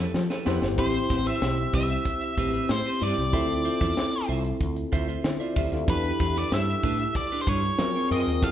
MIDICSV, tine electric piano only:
0, 0, Header, 1, 2, 480
1, 0, Start_track
1, 0, Key_signature, 0, "minor"
1, 0, Tempo, 636943
1, 590, Time_signature, 4, 2, 24, 8
1, 6417, End_track
2, 0, Start_track
2, 0, Title_t, "Tine electric piano"
2, 0, Program_c, 0, 4
2, 0, Control_c, 0, 64, 127
2, 0, Note_on_c, 0, 52, 72
2, 0, Note_on_c, 0, 59, 79
2, 0, Note_on_c, 0, 67, 72
2, 0, Note_on_c, 0, 69, 88
2, 341, Note_off_c, 0, 59, 0
2, 341, Note_on_c, 0, 59, 89
2, 342, Note_on_c, 0, 64, 73
2, 347, Note_off_c, 0, 67, 0
2, 347, Note_on_c, 0, 67, 82
2, 349, Note_on_c, 0, 72, 94
2, 552, Note_off_c, 0, 59, 0
2, 553, Note_off_c, 0, 64, 0
2, 555, Note_off_c, 0, 67, 0
2, 556, Note_off_c, 0, 72, 0
2, 582, Note_on_c, 0, 60, 78
2, 585, Note_on_c, 0, 64, 73
2, 590, Note_on_c, 0, 67, 73
2, 592, Note_on_c, 0, 72, 85
2, 599, Control_c, 0, 64, 0
2, 601, Note_off_c, 0, 52, 0
2, 604, Note_off_c, 0, 69, 0
2, 742, Control_c, 0, 64, 127
2, 1413, Note_off_c, 0, 60, 0
2, 1415, Note_off_c, 0, 64, 0
2, 1418, Note_off_c, 0, 67, 0
2, 1419, Note_off_c, 0, 72, 0
2, 2266, Note_on_c, 0, 60, 71
2, 2269, Note_on_c, 0, 64, 65
2, 2272, Note_on_c, 0, 67, 66
2, 2276, Note_on_c, 0, 74, 78
2, 2475, Note_off_c, 0, 60, 0
2, 2477, Note_off_c, 0, 64, 0
2, 2478, Note_off_c, 0, 67, 0
2, 2481, Note_off_c, 0, 74, 0
2, 2509, Note_on_c, 0, 60, 76
2, 2513, Note_on_c, 0, 64, 72
2, 2515, Note_on_c, 0, 65, 68
2, 2517, Note_on_c, 0, 69, 82
2, 2522, Control_c, 0, 64, 0
2, 2648, Control_c, 0, 64, 127
2, 3337, Note_off_c, 0, 60, 0
2, 3339, Note_off_c, 0, 64, 0
2, 3340, Note_off_c, 0, 65, 0
2, 3341, Note_off_c, 0, 69, 0
2, 3951, Note_on_c, 0, 72, 66
2, 3958, Note_on_c, 0, 64, 61
2, 4065, Note_off_c, 0, 72, 0
2, 4069, Note_off_c, 0, 64, 0
2, 4072, Note_on_c, 0, 74, 71
2, 4076, Note_on_c, 0, 65, 69
2, 4186, Note_off_c, 0, 74, 0
2, 4188, Note_off_c, 0, 65, 0
2, 4195, Note_on_c, 0, 76, 69
2, 4199, Note_on_c, 0, 67, 59
2, 4308, Note_off_c, 0, 76, 0
2, 4310, Note_off_c, 0, 67, 0
2, 4319, Note_on_c, 0, 77, 65
2, 4323, Note_on_c, 0, 69, 56
2, 4433, Note_on_c, 0, 62, 82
2, 4436, Note_on_c, 0, 64, 69
2, 4438, Note_on_c, 0, 67, 70
2, 4441, Control_c, 0, 64, 0
2, 4442, Note_on_c, 0, 71, 86
2, 4544, Note_off_c, 0, 77, 0
2, 4545, Note_off_c, 0, 69, 0
2, 4568, Control_c, 0, 64, 127
2, 5259, Note_off_c, 0, 62, 0
2, 5260, Note_off_c, 0, 64, 0
2, 5261, Note_off_c, 0, 67, 0
2, 5263, Note_off_c, 0, 71, 0
2, 5864, Note_on_c, 0, 60, 88
2, 5867, Note_on_c, 0, 65, 69
2, 5870, Note_on_c, 0, 68, 71
2, 5872, Note_on_c, 0, 70, 94
2, 5881, Control_c, 0, 64, 0
2, 6003, Control_c, 0, 64, 127
2, 6074, Note_off_c, 0, 60, 0
2, 6076, Note_off_c, 0, 65, 0
2, 6077, Note_off_c, 0, 68, 0
2, 6078, Note_off_c, 0, 70, 0
2, 6102, Note_on_c, 0, 60, 72
2, 6106, Note_on_c, 0, 65, 64
2, 6110, Note_on_c, 0, 68, 65
2, 6113, Note_on_c, 0, 70, 82
2, 6313, Note_off_c, 0, 60, 0
2, 6315, Note_off_c, 0, 65, 0
2, 6317, Note_off_c, 0, 68, 0
2, 6318, Note_off_c, 0, 70, 0
2, 6339, Note_on_c, 0, 59, 80
2, 6344, Note_on_c, 0, 52, 69
2, 6347, Note_on_c, 0, 67, 73
2, 6349, Note_on_c, 0, 69, 87
2, 6359, Control_c, 0, 64, 0
2, 6417, Note_off_c, 0, 52, 0
2, 6417, Note_off_c, 0, 59, 0
2, 6417, Note_off_c, 0, 67, 0
2, 6417, Note_off_c, 0, 69, 0
2, 6417, End_track
0, 0, End_of_file